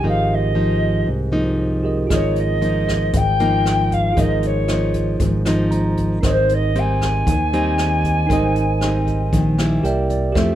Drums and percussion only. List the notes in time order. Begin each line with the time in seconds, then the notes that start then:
2.10 kick, cross-stick, closed hi-hat
2.36 closed hi-hat
2.62 closed hi-hat
2.88 kick, cross-stick, closed hi-hat
3.13 kick, closed hi-hat
3.40 closed hi-hat
3.66 cross-stick, closed hi-hat
3.91 kick, closed hi-hat
4.17 kick, closed hi-hat
4.43 closed hi-hat
4.68 cross-stick, closed hi-hat
4.94 kick, closed hi-hat
5.20 kick, closed hi-hat
5.45 cross-stick, closed hi-hat
5.71 closed hi-hat
5.97 kick, closed hi-hat
6.23 kick, cross-stick, closed hi-hat
6.49 closed hi-hat
6.75 closed hi-hat
7.01 kick, cross-stick, closed hi-hat
7.27 kick, closed hi-hat
7.53 closed hi-hat
7.78 cross-stick, closed hi-hat
8.04 kick, closed hi-hat
8.30 kick, closed hi-hat
8.56 closed hi-hat
8.81 cross-stick, closed hi-hat
9.07 kick, closed hi-hat
9.33 kick, closed hi-hat
9.58 cross-stick, closed hi-hat
9.84 closed hi-hat
10.10 kick, closed hi-hat
10.35 kick, cross-stick, closed hi-hat